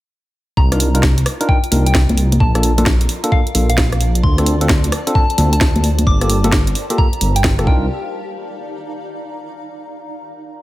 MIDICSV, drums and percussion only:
0, 0, Header, 1, 2, 480
1, 0, Start_track
1, 0, Tempo, 458015
1, 599, Time_signature, 4, 2, 24, 8
1, 11131, End_track
2, 0, Start_track
2, 0, Title_t, "Drums"
2, 599, Note_on_c, 9, 36, 115
2, 704, Note_off_c, 9, 36, 0
2, 754, Note_on_c, 9, 37, 57
2, 754, Note_on_c, 9, 42, 55
2, 839, Note_on_c, 9, 46, 110
2, 859, Note_off_c, 9, 37, 0
2, 859, Note_off_c, 9, 42, 0
2, 944, Note_off_c, 9, 46, 0
2, 994, Note_on_c, 9, 42, 66
2, 1079, Note_on_c, 9, 36, 118
2, 1080, Note_on_c, 9, 38, 119
2, 1099, Note_off_c, 9, 42, 0
2, 1184, Note_off_c, 9, 36, 0
2, 1184, Note_off_c, 9, 38, 0
2, 1235, Note_on_c, 9, 42, 53
2, 1320, Note_on_c, 9, 37, 72
2, 1320, Note_on_c, 9, 46, 109
2, 1339, Note_off_c, 9, 42, 0
2, 1425, Note_off_c, 9, 37, 0
2, 1425, Note_off_c, 9, 46, 0
2, 1475, Note_on_c, 9, 42, 65
2, 1559, Note_on_c, 9, 36, 119
2, 1580, Note_off_c, 9, 42, 0
2, 1664, Note_off_c, 9, 36, 0
2, 1715, Note_on_c, 9, 42, 37
2, 1800, Note_on_c, 9, 46, 116
2, 1800, Note_on_c, 9, 63, 61
2, 1820, Note_off_c, 9, 42, 0
2, 1905, Note_off_c, 9, 46, 0
2, 1905, Note_off_c, 9, 63, 0
2, 1955, Note_on_c, 9, 42, 67
2, 2039, Note_on_c, 9, 36, 124
2, 2040, Note_on_c, 9, 38, 122
2, 2059, Note_off_c, 9, 42, 0
2, 2144, Note_off_c, 9, 36, 0
2, 2145, Note_off_c, 9, 38, 0
2, 2195, Note_on_c, 9, 42, 38
2, 2195, Note_on_c, 9, 63, 60
2, 2280, Note_on_c, 9, 46, 112
2, 2299, Note_off_c, 9, 42, 0
2, 2299, Note_off_c, 9, 63, 0
2, 2384, Note_off_c, 9, 46, 0
2, 2435, Note_on_c, 9, 42, 69
2, 2435, Note_on_c, 9, 63, 62
2, 2519, Note_on_c, 9, 36, 126
2, 2539, Note_off_c, 9, 42, 0
2, 2539, Note_off_c, 9, 63, 0
2, 2624, Note_off_c, 9, 36, 0
2, 2675, Note_on_c, 9, 37, 57
2, 2675, Note_on_c, 9, 42, 51
2, 2759, Note_on_c, 9, 46, 108
2, 2780, Note_off_c, 9, 37, 0
2, 2780, Note_off_c, 9, 42, 0
2, 2864, Note_off_c, 9, 46, 0
2, 2914, Note_on_c, 9, 42, 63
2, 2914, Note_on_c, 9, 63, 77
2, 2999, Note_on_c, 9, 36, 124
2, 2999, Note_on_c, 9, 38, 127
2, 3019, Note_off_c, 9, 42, 0
2, 3019, Note_off_c, 9, 63, 0
2, 3103, Note_off_c, 9, 38, 0
2, 3104, Note_off_c, 9, 36, 0
2, 3153, Note_on_c, 9, 42, 52
2, 3238, Note_on_c, 9, 46, 108
2, 3258, Note_off_c, 9, 42, 0
2, 3343, Note_off_c, 9, 46, 0
2, 3393, Note_on_c, 9, 42, 63
2, 3479, Note_on_c, 9, 36, 119
2, 3498, Note_off_c, 9, 42, 0
2, 3584, Note_off_c, 9, 36, 0
2, 3634, Note_on_c, 9, 42, 35
2, 3719, Note_on_c, 9, 46, 114
2, 3739, Note_off_c, 9, 42, 0
2, 3824, Note_off_c, 9, 46, 0
2, 3873, Note_on_c, 9, 42, 65
2, 3958, Note_on_c, 9, 38, 127
2, 3959, Note_on_c, 9, 36, 127
2, 3978, Note_off_c, 9, 42, 0
2, 4063, Note_off_c, 9, 36, 0
2, 4063, Note_off_c, 9, 38, 0
2, 4113, Note_on_c, 9, 37, 61
2, 4113, Note_on_c, 9, 42, 36
2, 4198, Note_on_c, 9, 46, 106
2, 4218, Note_off_c, 9, 37, 0
2, 4218, Note_off_c, 9, 42, 0
2, 4303, Note_off_c, 9, 46, 0
2, 4353, Note_on_c, 9, 42, 67
2, 4438, Note_on_c, 9, 36, 127
2, 4458, Note_off_c, 9, 42, 0
2, 4543, Note_off_c, 9, 36, 0
2, 4593, Note_on_c, 9, 37, 55
2, 4593, Note_on_c, 9, 42, 51
2, 4679, Note_on_c, 9, 46, 103
2, 4698, Note_off_c, 9, 37, 0
2, 4698, Note_off_c, 9, 42, 0
2, 4784, Note_off_c, 9, 46, 0
2, 4833, Note_on_c, 9, 42, 64
2, 4918, Note_on_c, 9, 36, 126
2, 4918, Note_on_c, 9, 38, 126
2, 4938, Note_off_c, 9, 42, 0
2, 5023, Note_off_c, 9, 36, 0
2, 5023, Note_off_c, 9, 38, 0
2, 5074, Note_on_c, 9, 42, 52
2, 5159, Note_on_c, 9, 37, 70
2, 5159, Note_on_c, 9, 46, 102
2, 5178, Note_off_c, 9, 42, 0
2, 5264, Note_off_c, 9, 37, 0
2, 5264, Note_off_c, 9, 46, 0
2, 5314, Note_on_c, 9, 42, 63
2, 5399, Note_on_c, 9, 36, 125
2, 5419, Note_off_c, 9, 42, 0
2, 5503, Note_off_c, 9, 36, 0
2, 5554, Note_on_c, 9, 42, 36
2, 5639, Note_on_c, 9, 46, 109
2, 5639, Note_on_c, 9, 63, 64
2, 5659, Note_off_c, 9, 42, 0
2, 5743, Note_off_c, 9, 46, 0
2, 5743, Note_off_c, 9, 63, 0
2, 5794, Note_on_c, 9, 42, 64
2, 5878, Note_on_c, 9, 38, 127
2, 5879, Note_on_c, 9, 36, 127
2, 5898, Note_off_c, 9, 42, 0
2, 5983, Note_off_c, 9, 36, 0
2, 5983, Note_off_c, 9, 38, 0
2, 6033, Note_on_c, 9, 42, 36
2, 6033, Note_on_c, 9, 63, 62
2, 6118, Note_on_c, 9, 46, 105
2, 6138, Note_off_c, 9, 42, 0
2, 6138, Note_off_c, 9, 63, 0
2, 6223, Note_off_c, 9, 46, 0
2, 6273, Note_on_c, 9, 42, 66
2, 6273, Note_on_c, 9, 63, 61
2, 6359, Note_on_c, 9, 36, 127
2, 6378, Note_off_c, 9, 42, 0
2, 6378, Note_off_c, 9, 63, 0
2, 6464, Note_off_c, 9, 36, 0
2, 6512, Note_on_c, 9, 37, 53
2, 6512, Note_on_c, 9, 42, 52
2, 6598, Note_on_c, 9, 46, 99
2, 6617, Note_off_c, 9, 37, 0
2, 6617, Note_off_c, 9, 42, 0
2, 6703, Note_off_c, 9, 46, 0
2, 6752, Note_on_c, 9, 42, 64
2, 6752, Note_on_c, 9, 63, 83
2, 6837, Note_on_c, 9, 38, 126
2, 6839, Note_on_c, 9, 36, 126
2, 6857, Note_off_c, 9, 42, 0
2, 6857, Note_off_c, 9, 63, 0
2, 6942, Note_off_c, 9, 38, 0
2, 6944, Note_off_c, 9, 36, 0
2, 6993, Note_on_c, 9, 42, 53
2, 7078, Note_on_c, 9, 46, 98
2, 7098, Note_off_c, 9, 42, 0
2, 7182, Note_off_c, 9, 46, 0
2, 7233, Note_on_c, 9, 42, 65
2, 7319, Note_on_c, 9, 36, 123
2, 7338, Note_off_c, 9, 42, 0
2, 7423, Note_off_c, 9, 36, 0
2, 7473, Note_on_c, 9, 42, 36
2, 7557, Note_on_c, 9, 46, 109
2, 7577, Note_off_c, 9, 42, 0
2, 7662, Note_off_c, 9, 46, 0
2, 7713, Note_on_c, 9, 42, 67
2, 7798, Note_on_c, 9, 38, 127
2, 7799, Note_on_c, 9, 36, 127
2, 7817, Note_off_c, 9, 42, 0
2, 7903, Note_off_c, 9, 36, 0
2, 7903, Note_off_c, 9, 38, 0
2, 7953, Note_on_c, 9, 37, 58
2, 7953, Note_on_c, 9, 42, 35
2, 8039, Note_on_c, 9, 36, 119
2, 8058, Note_off_c, 9, 37, 0
2, 8058, Note_off_c, 9, 42, 0
2, 8143, Note_off_c, 9, 36, 0
2, 11131, End_track
0, 0, End_of_file